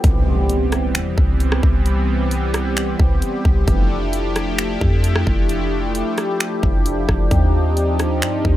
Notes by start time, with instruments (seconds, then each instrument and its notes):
0.04 808-style bass C2, analog synth pad E3 G3 B3 C4 G4, kick, closed hi-hat, impact
0.49 closed hi-hat
0.72 cross-stick, closed hi-hat
0.95 808-style bass E2, finger snap, closed hi-hat
1.18 808-style bass C2, kick
1.40 closed hi-hat
1.52 cross-stick
1.63 808-style bass C2, kick
1.86 closed hi-hat
2.31 closed hi-hat
2.54 cross-stick, closed hi-hat
2.77 finger snap, closed hi-hat
3.00 808-style bass C2, kick
3.22 closed hi-hat
3.45 808-style bass C2, kick
3.67 808-style bass F1, analog synth pad F3 A3 D4 E4, kick, closed hi-hat
4.13 closed hi-hat
4.36 cross-stick, closed hi-hat
4.58 finger snap, closed hi-hat
4.81 808-style bass F2, kick
5.04 closed hi-hat
5.16 cross-stick
5.27 808-style bass F1, kick
5.49 closed hi-hat
5.95 closed hi-hat
6.18 cross-stick, closed hi-hat
6.40 finger snap, closed hi-hat
6.63 808-style bass F1, kick
6.86 closed hi-hat
7.09 808-style bass F1, kick, cross-stick
7.31 808-style bass D#2, analog synth pad C4 D#4, kick, closed hi-hat
7.77 closed hi-hat
7.99 cross-stick, closed hi-hat
8.22 808-style bass G2, finger snap, closed hi-hat
8.45 808-style bass D#2, kick